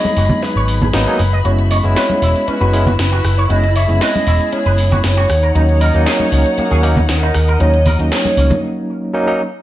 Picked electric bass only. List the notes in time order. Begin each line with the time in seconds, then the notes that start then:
0.17 F#1
0.56 G#1
0.94 G#1
1.20 F#1
1.45 F#1
1.84 F#1
2.22 E1
2.48 muted picked electric bass stroke
2.61 F#1
2.99 F#1
3.24 F#1
3.50 F#1
3.89 F#1
4.27 E1
4.66 F#1
5.04 F#1
5.30 D#2
5.55 D#2
5.94 D#2
6.32 C#2
6.58 muted picked electric bass stroke
6.71 D#2
7.09 D#2
7.35 D#2
7.60 D#2
8.00 D#2
8.37 C#2